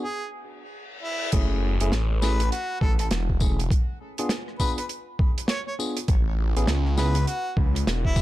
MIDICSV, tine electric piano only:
0, 0, Header, 1, 2, 480
1, 0, Start_track
1, 0, Key_signature, 3, "minor"
1, 0, Tempo, 594059
1, 1076, Time_signature, 4, 2, 24, 8
1, 6639, End_track
2, 0, Start_track
2, 0, Title_t, "Tine electric piano"
2, 0, Program_c, 0, 4
2, 1074, Note_on_c, 0, 64, 91
2, 1075, Note_on_c, 0, 68, 110
2, 1076, Note_on_c, 0, 57, 99
2, 1076, Note_on_c, 0, 61, 90
2, 1404, Note_off_c, 0, 57, 0
2, 1404, Note_off_c, 0, 61, 0
2, 1404, Note_off_c, 0, 64, 0
2, 1404, Note_off_c, 0, 68, 0
2, 1463, Note_on_c, 0, 61, 82
2, 1463, Note_on_c, 0, 64, 83
2, 1464, Note_on_c, 0, 57, 91
2, 1465, Note_on_c, 0, 68, 96
2, 1557, Note_off_c, 0, 61, 0
2, 1557, Note_off_c, 0, 64, 0
2, 1558, Note_off_c, 0, 57, 0
2, 1558, Note_off_c, 0, 68, 0
2, 1797, Note_on_c, 0, 57, 91
2, 1798, Note_on_c, 0, 61, 83
2, 1798, Note_on_c, 0, 64, 83
2, 1798, Note_on_c, 0, 68, 104
2, 1945, Note_off_c, 0, 57, 0
2, 1945, Note_off_c, 0, 61, 0
2, 1945, Note_off_c, 0, 64, 0
2, 1946, Note_off_c, 0, 68, 0
2, 2759, Note_on_c, 0, 57, 77
2, 2759, Note_on_c, 0, 61, 71
2, 2759, Note_on_c, 0, 64, 68
2, 2759, Note_on_c, 0, 68, 83
2, 2906, Note_off_c, 0, 57, 0
2, 2906, Note_off_c, 0, 61, 0
2, 2906, Note_off_c, 0, 64, 0
2, 2906, Note_off_c, 0, 68, 0
2, 3386, Note_on_c, 0, 62, 83
2, 3387, Note_on_c, 0, 65, 83
2, 3387, Note_on_c, 0, 68, 102
2, 3388, Note_on_c, 0, 59, 91
2, 3479, Note_off_c, 0, 62, 0
2, 3479, Note_off_c, 0, 65, 0
2, 3479, Note_off_c, 0, 68, 0
2, 3480, Note_off_c, 0, 59, 0
2, 3715, Note_on_c, 0, 59, 92
2, 3715, Note_on_c, 0, 68, 102
2, 3716, Note_on_c, 0, 62, 84
2, 3716, Note_on_c, 0, 65, 85
2, 3864, Note_off_c, 0, 59, 0
2, 3864, Note_off_c, 0, 68, 0
2, 3865, Note_off_c, 0, 62, 0
2, 3865, Note_off_c, 0, 65, 0
2, 4678, Note_on_c, 0, 59, 76
2, 4678, Note_on_c, 0, 65, 71
2, 4679, Note_on_c, 0, 62, 72
2, 4679, Note_on_c, 0, 68, 83
2, 4825, Note_off_c, 0, 59, 0
2, 4825, Note_off_c, 0, 65, 0
2, 4826, Note_off_c, 0, 62, 0
2, 4826, Note_off_c, 0, 68, 0
2, 5305, Note_on_c, 0, 59, 95
2, 5305, Note_on_c, 0, 61, 87
2, 5305, Note_on_c, 0, 64, 82
2, 5306, Note_on_c, 0, 68, 101
2, 5398, Note_off_c, 0, 59, 0
2, 5398, Note_off_c, 0, 61, 0
2, 5398, Note_off_c, 0, 64, 0
2, 5399, Note_off_c, 0, 68, 0
2, 5638, Note_on_c, 0, 59, 94
2, 5638, Note_on_c, 0, 68, 101
2, 5639, Note_on_c, 0, 61, 84
2, 5639, Note_on_c, 0, 64, 84
2, 5786, Note_off_c, 0, 59, 0
2, 5786, Note_off_c, 0, 61, 0
2, 5786, Note_off_c, 0, 64, 0
2, 5786, Note_off_c, 0, 68, 0
2, 6602, Note_on_c, 0, 59, 77
2, 6602, Note_on_c, 0, 61, 71
2, 6602, Note_on_c, 0, 64, 70
2, 6602, Note_on_c, 0, 68, 87
2, 6639, Note_off_c, 0, 59, 0
2, 6639, Note_off_c, 0, 61, 0
2, 6639, Note_off_c, 0, 64, 0
2, 6639, Note_off_c, 0, 68, 0
2, 6639, End_track
0, 0, End_of_file